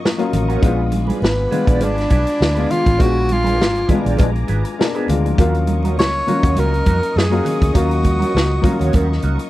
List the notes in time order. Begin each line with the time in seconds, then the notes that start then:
Already playing: F3 F#3 A#3 C#4 F4 D#5 C#6 D#6
0.04 muted clean electric guitar stroke, snare, muted conga
0.18 F#3 A#3 C#4 F4, muted clean electric guitar stroke, closed hi-hat
0.33 A1, closed hi-hat, muted conga, low conga
0.48 C#4 F#4 A#4, closed hi-hat
0.62 A#1 G#3 B3 D4 F4 G#4 B4 G#5 B5 D6, kick, closed hi-hat
0.92 muted clean electric guitar stroke, closed hi-hat, muted conga, high conga
1.07 D4 G#4 B4, closed hi-hat, high conga
1.22 G#1 B3, muted clean electric guitar stroke, snare, muted conga
1.38 muted clean electric guitar stroke
1.51 G#3 B3 D4 F4 G#4 B4, closed hi-hat, high conga, low conga
1.66 A#1 D4 G#4 D5, kick, closed hi-hat, low conga
1.80 G#1 D4 G#4 B4, closed hi-hat, muted conga, high conga
1.97 muted clean electric guitar stroke, snare, closed hi-hat
2.10 B1 D4 G#4 B4, kick, closed hi-hat, high conga
2.26 muted clean electric guitar stroke, closed hi-hat
2.40 D2, muted clean electric guitar stroke, snare, muted conga
2.55 G#3 B3 D4 F4 G#4 B4, closed hi-hat
2.69 F4, muted clean electric guitar stroke, closed hi-hat, muted conga, low conga
2.85 A1, muted clean electric guitar stroke, kick, closed hi-hat
2.98 A#1 G#3 B3 D4 F4 F#4 G#4 B4 A#5, kick, closed hi-hat
3.28 F4, muted clean electric guitar stroke, closed hi-hat, muted conga, high conga
3.44 D4 G#4 B4, closed hi-hat, high conga
3.57 G#1, muted clean electric guitar stroke, muted conga
3.61 snare
3.74 muted clean electric guitar stroke, closed hi-hat
3.87 B2 G#3 B3 D4 G#4 B4, kick, closed hi-hat, muted conga, high conga, low conga
3.92 F4
4.03 A#1 D4 G#4 D5, closed hi-hat, low conga
4.17 A#1 B2 G#3 D4 G#4 B4, kick, closed hi-hat, muted conga, high conga
4.33 muted clean electric guitar stroke, closed hi-hat
4.47 G#1 D4 G#4 B4, closed hi-hat, high conga
4.65 muted clean electric guitar stroke, closed hi-hat
4.78 B2 G#3 D4 A#4, muted clean electric guitar stroke, snare
4.95 B3 D4 G#4 B4, closed hi-hat
5.08 D2 G#3 F4, muted clean electric guitar stroke, closed hi-hat, muted conga, low conga
5.25 F3 D4, muted clean electric guitar stroke, closed hi-hat
5.38 D#2 F#3 A#3 C#4 F4 F#4 A#4 D#5 C#6 D#6, kick, closed hi-hat, muted conga
5.54 closed hi-hat
5.67 muted clean electric guitar stroke, closed hi-hat, high conga
5.83 C#4 F#4 A#4, closed hi-hat, high conga
5.97 C#2 C#5, muted clean electric guitar stroke, snare, muted conga
6.14 muted clean electric guitar stroke
6.27 F#3 A#3 C#4 F4 F#4 A#4, closed hi-hat, muted conga, high conga, low conga
6.43 D#2 C#4 F#4 C#5, kick, closed hi-hat, low conga
6.55 C#2 C#4 F#4 A#4, closed hi-hat, high conga
6.74 muted clean electric guitar stroke, closed hi-hat
6.86 F2 C#4 F#4 A#4, kick, closed hi-hat, muted conga, high conga
7.03 muted clean electric guitar stroke, closed hi-hat
7.16 F#2 G#4, muted clean electric guitar stroke, snare, muted conga
7.30 F#3 A#3 C#4 F4 F#4 A#4, closed hi-hat
7.45 muted clean electric guitar stroke, closed hi-hat, muted conga, low conga
7.61 D2, muted clean electric guitar stroke, kick, closed hi-hat
7.74 D#2 F#3 A#3 C#4 F#4 A#4 F5, kick, closed hi-hat, muted conga
7.91 closed hi-hat
8.03 muted clean electric guitar stroke, kick, closed hi-hat, high conga
8.19 C#4 F#4 A#4, closed hi-hat, high conga
8.34 C#2, muted clean electric guitar stroke, snare, muted conga
8.50 muted clean electric guitar stroke
8.62 F#3 A#3 C#4 F4 F#4 A#4, kick, closed hi-hat, muted conga, high conga, low conga
8.79 D#2 C#4 F#4 C#5, closed hi-hat, low conga
8.93 D#2 C#4 F#4 A#4, kick, closed hi-hat, muted conga, high conga
9.10 muted clean electric guitar stroke, snare
9.22 C#2 C#4 F#4 A#4, closed hi-hat, muted conga, high conga
9.39 muted clean electric guitar stroke, closed hi-hat